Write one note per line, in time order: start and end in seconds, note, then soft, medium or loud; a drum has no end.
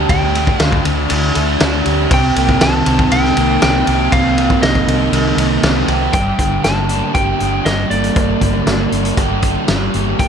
0.00 0.33 A3 medium
0.00 0.83 D4 medium
0.00 1.38 G4 medium
0.00 0.11 A5 medium
0.09 0.49 D2 medium
0.09 0.59 D3 medium
0.09 0.62 G5 medium
0.09 kick loud
0.09 ride loud
0.35 1.33 A3 medium
0.35 ride medium
0.47 kick medium
0.59 0.80 D2 medium
0.59 1.08 D3 medium
0.59 0.81 F5 medium
0.59 snare loud
0.59 ride loud
0.72 kick medium
0.84 1.05 D2 loud
0.84 1.59 D4 medium
0.84 ride medium
1.09 1.30 D2 loud
1.09 2.10 D3 medium
1.09 ride loud
1.35 1.56 D2 medium
1.35 2.10 A3 medium
1.35 ride medium
1.60 1.81 D2 loud
1.60 2.11 D4 medium
1.60 snare loud
1.60 ride loud
1.85 2.06 D2 medium
1.85 3.86 G4 medium
1.85 ride medium
2.11 2.31 C2 medium
2.11 3.36 C3 medium
2.11 2.62 G5 loud
2.11 kick loud
2.11 ride loud
2.36 2.56 C2 medium
2.36 3.36 A#3 medium
2.36 ride medium
2.49 kick medium
2.61 2.81 C2 medium
2.61 3.10 D#3 medium
2.61 3.12 A5 loud
2.61 snare loud
2.61 ride loud
2.86 3.06 C2 medium
2.86 3.61 C4 medium
2.86 ride medium
2.99 kick medium
3.11 3.32 C2 loud
3.11 4.37 D#3 medium
3.11 3.61 G5 loud
3.11 ride loud
3.25 snare soft
3.37 3.57 C2 medium
3.37 4.36 A#3 medium
3.37 ride medium
3.62 3.82 C2 medium
3.62 4.87 C4 medium
3.62 4.14 G5 loud
3.62 snare loud
3.62 ride loud
3.86 4.07 C2 loud
3.86 5.12 G4 medium
3.86 ride medium
4.12 4.52 C2 medium
4.12 5.38 C3 medium
4.12 4.62 F5 loud
4.12 kick loud
4.12 ride loud
4.37 5.37 A#3 medium
4.37 ride medium
4.50 kick loud
4.62 4.82 C2 loud
4.62 5.12 D#3 medium
4.62 5.84 D#5 medium
4.62 snare loud
4.62 ride loud
4.75 kick medium
4.87 5.07 C2 loud
4.87 5.62 C4 medium
4.87 ride medium
5.12 5.32 C2 loud
5.12 6.14 D#3 medium
5.12 ride loud
5.37 5.57 C2 medium
5.37 6.14 A#3 medium
5.37 ride medium
5.63 5.83 C2 loud
5.63 6.14 C4 medium
5.63 snare loud
5.63 ride loud
5.88 6.08 C2 medium
5.88 6.13 G4 medium
5.88 ride medium
6.13 6.32 G1 medium
6.13 8.15 G2 medium
6.13 6.64 G5 medium
6.13 kick loud
6.13 closed hi-hat medium
6.39 6.57 G1 medium
6.39 7.65 D3 medium
6.39 kick medium
6.39 closed hi-hat medium
6.63 7.01 G1 medium
6.63 7.89 A#3 medium
6.63 7.14 A5 medium
6.63 snare medium
6.63 closed hi-hat medium
6.89 7.38 D4 medium
6.89 closed hi-hat medium
7.14 7.33 G1 medium
7.14 9.17 G4 medium
7.14 7.67 G5 loud
7.14 kick loud
7.14 closed hi-hat medium
7.39 7.59 G1 medium
7.39 8.91 D4 medium
7.39 closed hi-hat medium
7.64 7.84 G1 medium
7.64 9.68 G3 medium
7.64 7.90 D#5 medium
7.64 snare loud
7.64 closed hi-hat medium
7.90 8.09 G1 medium
7.90 8.66 A#3 medium
7.90 8.88 D5 medium
7.90 closed hi-hat medium
8.04 closed hi-hat medium
8.15 8.34 G1 medium
8.15 10.19 G2 medium
8.15 kick loud
8.15 closed hi-hat medium
8.41 8.60 G1 medium
8.41 9.68 D3 medium
8.41 kick medium
8.41 closed hi-hat medium
8.66 8.85 G1 medium
8.66 9.93 A#3 medium
8.66 snare medium
8.66 closed hi-hat medium
8.92 9.10 G1 medium
8.92 9.43 D4 medium
8.92 closed hi-hat medium
9.05 closed hi-hat medium
9.17 9.54 G1 medium
9.17 10.28 G4 medium
9.17 kick loud
9.17 closed hi-hat medium
9.42 10.28 D4 medium
9.42 kick medium
9.42 closed hi-hat medium
9.68 9.87 G1 medium
9.68 10.28 G3 medium
9.68 snare loud
9.68 closed hi-hat medium
9.93 10.13 G1 medium
9.93 10.28 A#3 medium
9.93 closed hi-hat medium
10.19 10.28 G1 medium
10.19 10.28 G2 medium
10.19 10.28 G5 loud
10.19 kick loud
10.19 closed hi-hat medium